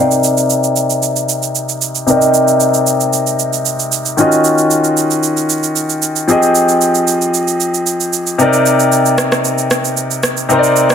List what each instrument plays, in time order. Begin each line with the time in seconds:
Already playing: grand piano C3 C4 G5
0.00 grand piano D#4 A#4 D5
0.11 shaker
0.24 shaker
0.38 shaker
0.50 shaker
0.64 shaker
0.76 shaker
0.90 shaker
1.03 shaker
1.16 shaker
1.29 shaker
1.43 shaker
1.55 shaker
1.69 shaker
1.82 shaker
1.95 shaker
2.06 grand piano C3 C4 D#4 A#4 D5, shaker
2.17 grand piano D#5
2.22 shaker
2.34 shaker
2.48 shaker
2.60 shaker
2.74 shaker
2.87 shaker
3.01 shaker
3.13 shaker
3.27 shaker
3.40 shaker
3.53 shaker
3.66 shaker
3.80 shaker
3.92 shaker
4.06 shaker
4.17 grand piano D#3 C#4 F4 F#4 D#5, shaker
4.32 shaker
4.45 shaker
4.58 shaker
4.71 shaker
4.84 shaker
4.97 shaker
5.11 shaker
5.23 shaker
5.37 shaker
5.50 shaker
5.64 shaker
5.76 shaker
5.90 shaker
6.02 shaker
6.16 shaker
6.28 grand piano F3 C4 G4 G#4 D#5, shaker
6.43 shaker
6.55 shaker
6.69 shaker
6.81 shaker
6.95 shaker
7.08 shaker
7.22 shaker
7.34 shaker
7.48 shaker
7.61 shaker
7.74 shaker
7.87 shaker
8.01 shaker
8.13 shaker
8.27 shaker
8.38 grand piano C3 C4 D#4 A#4 D5, shaker
8.53 shaker
8.66 shaker
8.80 shaker
8.92 shaker
9.06 shaker
9.18 cross-stick, shaker
9.32 cross-stick, shaker
9.45 shaker
9.58 shaker
9.71 cross-stick, shaker
9.85 shaker
9.97 shaker
10.11 shaker
10.23 cross-stick, shaker
10.37 shaker
10.49 grand piano C3 C4 D#4 A#4 C5, shaker
10.59 grand piano D5
10.64 shaker
10.76 shaker
10.90 cross-stick, shaker